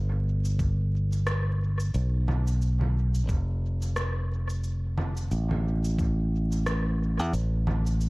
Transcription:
0, 0, Header, 1, 3, 480
1, 0, Start_track
1, 0, Tempo, 674157
1, 1383, Time_signature, 4, 2, 24, 8
1, 5760, End_track
2, 0, Start_track
2, 0, Title_t, "Fingered electric bass"
2, 0, Program_c, 0, 33
2, 0, Note_on_c, 0, 31, 78
2, 1363, Note_off_c, 0, 31, 0
2, 1384, Note_on_c, 0, 35, 96
2, 2342, Note_off_c, 0, 35, 0
2, 2342, Note_on_c, 0, 29, 76
2, 3763, Note_off_c, 0, 29, 0
2, 3784, Note_on_c, 0, 33, 82
2, 5122, Note_off_c, 0, 33, 0
2, 5122, Note_on_c, 0, 40, 83
2, 5211, Note_off_c, 0, 40, 0
2, 5221, Note_on_c, 0, 33, 95
2, 5760, Note_off_c, 0, 33, 0
2, 5760, End_track
3, 0, Start_track
3, 0, Title_t, "Drums"
3, 321, Note_on_c, 9, 69, 49
3, 392, Note_off_c, 9, 69, 0
3, 422, Note_on_c, 9, 36, 97
3, 422, Note_on_c, 9, 69, 36
3, 493, Note_off_c, 9, 36, 0
3, 493, Note_off_c, 9, 69, 0
3, 801, Note_on_c, 9, 69, 48
3, 872, Note_off_c, 9, 69, 0
3, 901, Note_on_c, 9, 37, 86
3, 901, Note_on_c, 9, 69, 36
3, 972, Note_off_c, 9, 37, 0
3, 972, Note_off_c, 9, 69, 0
3, 1281, Note_on_c, 9, 69, 46
3, 1352, Note_off_c, 9, 69, 0
3, 1383, Note_on_c, 9, 69, 40
3, 1454, Note_off_c, 9, 69, 0
3, 1624, Note_on_c, 9, 64, 75
3, 1695, Note_off_c, 9, 64, 0
3, 1762, Note_on_c, 9, 69, 51
3, 1833, Note_off_c, 9, 69, 0
3, 1863, Note_on_c, 9, 69, 39
3, 1935, Note_off_c, 9, 69, 0
3, 2001, Note_on_c, 9, 64, 63
3, 2072, Note_off_c, 9, 64, 0
3, 2240, Note_on_c, 9, 69, 49
3, 2311, Note_off_c, 9, 69, 0
3, 2341, Note_on_c, 9, 36, 96
3, 2342, Note_on_c, 9, 69, 39
3, 2413, Note_off_c, 9, 36, 0
3, 2413, Note_off_c, 9, 69, 0
3, 2721, Note_on_c, 9, 69, 50
3, 2792, Note_off_c, 9, 69, 0
3, 2822, Note_on_c, 9, 37, 83
3, 2822, Note_on_c, 9, 69, 39
3, 2893, Note_off_c, 9, 37, 0
3, 2893, Note_off_c, 9, 69, 0
3, 3201, Note_on_c, 9, 69, 49
3, 3272, Note_off_c, 9, 69, 0
3, 3301, Note_on_c, 9, 69, 40
3, 3372, Note_off_c, 9, 69, 0
3, 3542, Note_on_c, 9, 64, 80
3, 3613, Note_off_c, 9, 64, 0
3, 3680, Note_on_c, 9, 69, 55
3, 3752, Note_off_c, 9, 69, 0
3, 3783, Note_on_c, 9, 69, 39
3, 3854, Note_off_c, 9, 69, 0
3, 3922, Note_on_c, 9, 64, 65
3, 3994, Note_off_c, 9, 64, 0
3, 4162, Note_on_c, 9, 69, 51
3, 4233, Note_off_c, 9, 69, 0
3, 4262, Note_on_c, 9, 36, 101
3, 4264, Note_on_c, 9, 69, 42
3, 4333, Note_off_c, 9, 36, 0
3, 4335, Note_off_c, 9, 69, 0
3, 4643, Note_on_c, 9, 69, 53
3, 4714, Note_off_c, 9, 69, 0
3, 4744, Note_on_c, 9, 37, 85
3, 4744, Note_on_c, 9, 69, 41
3, 4816, Note_off_c, 9, 37, 0
3, 4816, Note_off_c, 9, 69, 0
3, 5123, Note_on_c, 9, 69, 50
3, 5194, Note_off_c, 9, 69, 0
3, 5223, Note_on_c, 9, 69, 43
3, 5294, Note_off_c, 9, 69, 0
3, 5461, Note_on_c, 9, 64, 81
3, 5533, Note_off_c, 9, 64, 0
3, 5601, Note_on_c, 9, 69, 56
3, 5672, Note_off_c, 9, 69, 0
3, 5701, Note_on_c, 9, 69, 42
3, 5760, Note_off_c, 9, 69, 0
3, 5760, End_track
0, 0, End_of_file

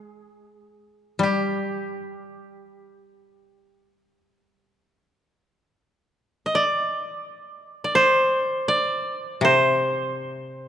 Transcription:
0, 0, Header, 1, 3, 480
1, 0, Start_track
1, 0, Tempo, 500000
1, 10255, End_track
2, 0, Start_track
2, 0, Title_t, "Koto"
2, 0, Program_c, 0, 107
2, 0, Note_on_c, 0, 68, 57
2, 1121, Note_off_c, 0, 68, 0
2, 1184, Note_on_c, 0, 67, 55
2, 3711, Note_off_c, 0, 67, 0
2, 6201, Note_on_c, 0, 75, 55
2, 6287, Note_on_c, 0, 74, 84
2, 6345, Note_off_c, 0, 75, 0
2, 7525, Note_off_c, 0, 74, 0
2, 7529, Note_on_c, 0, 74, 61
2, 7633, Note_on_c, 0, 72, 85
2, 8331, Note_off_c, 0, 74, 0
2, 8335, Note_on_c, 0, 74, 84
2, 9064, Note_off_c, 0, 72, 0
2, 9068, Note_on_c, 0, 72, 84
2, 9872, Note_off_c, 0, 74, 0
2, 10255, Note_off_c, 0, 72, 0
2, 10255, End_track
3, 0, Start_track
3, 0, Title_t, "Koto"
3, 0, Program_c, 1, 107
3, 0, Note_on_c, 1, 56, 40
3, 1144, Note_on_c, 1, 55, 46
3, 1679, Note_off_c, 1, 56, 0
3, 4160, Note_off_c, 1, 55, 0
3, 9034, Note_on_c, 1, 48, 58
3, 10255, Note_off_c, 1, 48, 0
3, 10255, End_track
0, 0, End_of_file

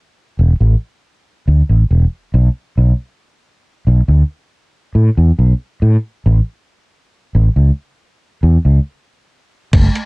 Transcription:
0, 0, Header, 1, 3, 480
1, 0, Start_track
1, 0, Tempo, 869565
1, 1533, Time_signature, 4, 2, 24, 8
1, 5550, End_track
2, 0, Start_track
2, 0, Title_t, "Fretless electric bass"
2, 0, Program_c, 0, 35
2, 215, Note_on_c, 0, 28, 83
2, 287, Note_off_c, 0, 28, 0
2, 334, Note_on_c, 0, 33, 80
2, 409, Note_off_c, 0, 33, 0
2, 814, Note_on_c, 0, 38, 79
2, 889, Note_off_c, 0, 38, 0
2, 934, Note_on_c, 0, 33, 76
2, 1007, Note_off_c, 0, 33, 0
2, 1052, Note_on_c, 0, 28, 82
2, 1128, Note_off_c, 0, 28, 0
2, 1291, Note_on_c, 0, 35, 89
2, 1368, Note_off_c, 0, 35, 0
2, 1531, Note_on_c, 0, 35, 92
2, 1608, Note_off_c, 0, 35, 0
2, 2136, Note_on_c, 0, 35, 85
2, 2208, Note_off_c, 0, 35, 0
2, 2254, Note_on_c, 0, 38, 85
2, 2329, Note_off_c, 0, 38, 0
2, 2732, Note_on_c, 0, 45, 81
2, 2808, Note_off_c, 0, 45, 0
2, 2856, Note_on_c, 0, 40, 76
2, 2928, Note_off_c, 0, 40, 0
2, 2973, Note_on_c, 0, 35, 84
2, 3049, Note_off_c, 0, 35, 0
2, 3213, Note_on_c, 0, 45, 94
2, 3289, Note_off_c, 0, 45, 0
2, 3455, Note_on_c, 0, 33, 92
2, 3530, Note_off_c, 0, 33, 0
2, 4056, Note_on_c, 0, 33, 86
2, 4128, Note_off_c, 0, 33, 0
2, 4173, Note_on_c, 0, 37, 86
2, 4249, Note_off_c, 0, 37, 0
2, 4653, Note_on_c, 0, 40, 82
2, 4729, Note_off_c, 0, 40, 0
2, 4774, Note_on_c, 0, 37, 77
2, 4847, Note_off_c, 0, 37, 0
2, 5373, Note_on_c, 0, 30, 99
2, 5449, Note_off_c, 0, 30, 0
2, 5550, End_track
3, 0, Start_track
3, 0, Title_t, "Drums"
3, 5372, Note_on_c, 9, 42, 69
3, 5372, Note_on_c, 9, 49, 102
3, 5372, Note_on_c, 9, 63, 28
3, 5373, Note_on_c, 9, 36, 118
3, 5427, Note_off_c, 9, 42, 0
3, 5427, Note_off_c, 9, 49, 0
3, 5427, Note_off_c, 9, 63, 0
3, 5428, Note_off_c, 9, 36, 0
3, 5495, Note_on_c, 9, 42, 38
3, 5550, Note_off_c, 9, 42, 0
3, 5550, End_track
0, 0, End_of_file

